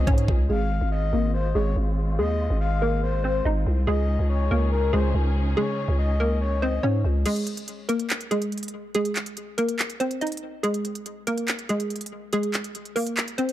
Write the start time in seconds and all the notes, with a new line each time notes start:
Already playing: C#3 C#4 D#4 G#4
0.07 G#2 C#4 C#5, kick, closed hi-hat
0.18 closed hi-hat
0.28 C#2, kick
0.50 G#1 G#3 C4 F4 G#4 F5
0.81 G#1
0.92 D#5
1.13 G#1 A#3 A#4
1.34 C5
1.55 G#1 G#3 G#4 C#5
1.76 G#1
2.18 D#2 G#3 G#4 D#5
2.50 G#1
2.61 F5
2.82 A#3 A#4
3.03 C5
3.24 C4 C5
3.45 G#1 D#4 D#5
3.67 C2
3.87 C#2 C#3 G#3 C#4 D#4 G#4 D#5
4.19 C#2
4.30 C#5
4.51 C#2 A#3 A#4
4.72 A#4
4.93 C#2 G#3 G#4 C5
5.14 C#2
5.57 G#3 G#4 C#5
5.88 C#2
5.99 D#5
6.20 A#3 A#4
6.41 C#5
6.62 C4 C5 D#5
6.83 G#2 C#4 C#5
7.04 C#2
7.26 G#3 G#4, closed hi-hat, crash
7.36 closed hi-hat
7.47 closed hi-hat
7.57 closed hi-hat
7.68 closed hi-hat
7.89 A#3 A#4, closed hi-hat
7.99 closed hi-hat
8.10 clap, closed hi-hat
8.21 closed hi-hat
8.31 G#3 G#4, closed hi-hat
8.42 closed hi-hat
8.52 closed hi-hat
8.58 closed hi-hat
8.63 closed hi-hat
8.68 closed hi-hat
8.95 G#3 G#4, closed hi-hat
9.05 closed hi-hat
9.16 clap, closed hi-hat
9.26 closed hi-hat
9.37 closed hi-hat
9.58 A#3 A#4, closed hi-hat
9.69 closed hi-hat
9.79 clap, closed hi-hat
9.90 closed hi-hat
10.00 C4 C5, closed hi-hat
10.11 closed hi-hat
10.21 D#4 D#5, closed hi-hat
10.27 closed hi-hat
10.32 closed hi-hat
10.37 closed hi-hat
10.63 G#3 G#4, closed hi-hat
10.74 closed hi-hat
10.85 closed hi-hat
10.95 closed hi-hat
11.06 closed hi-hat
11.27 A#3 A#4, closed hi-hat
11.38 closed hi-hat
11.48 clap, closed hi-hat
11.59 closed hi-hat
11.69 G#3 G#4, closed hi-hat
11.80 closed hi-hat
11.90 closed hi-hat
11.96 closed hi-hat
12.01 closed hi-hat
12.06 closed hi-hat
12.33 G#3 G#4, closed hi-hat
12.43 closed hi-hat
12.54 clap, closed hi-hat
12.64 closed hi-hat
12.75 closed hi-hat
12.85 closed hi-hat
12.96 A#3 A#4, open hi-hat
13.07 closed hi-hat
13.17 clap, closed hi-hat
13.28 closed hi-hat
13.38 C4 C5, closed hi-hat
13.49 closed hi-hat